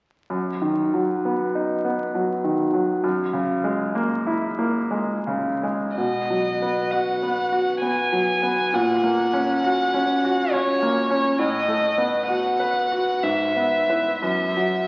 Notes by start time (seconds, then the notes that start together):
0.30 F#2
0.61 D#3
0.94 F#3
1.25 B3
1.55 D#4
1.85 B3
2.15 F#3
2.44 D#3
2.74 F#3
3.04 F#2
3.33 C#3
3.64 G#3
3.95 A#3
4.27 E4
4.59 A#3
4.91 G#3
5.27 C#3
5.63 G#3
5.97 B2 D#5
6.30 F#3
6.62 B3
6.91 F#4 F#5
7.22 B3
7.52 F#4
7.82 B3 G#5
8.12 F#3
8.43 B3
8.74 A#2 F#5
9.04 A#3
9.33 C#4
9.64 F#4
9.94 C#4
10.24 F#4
10.52 C#4 C#5
10.82 A#3
11.10 C#4
11.38 A2 D#5
11.68 A3
11.98 B3
12.27 F#4 F#5
12.60 B4
12.92 F#4
13.23 G#2 E5
13.56 B3
13.89 E4 B4
14.21 F#2 E5
14.57 F#3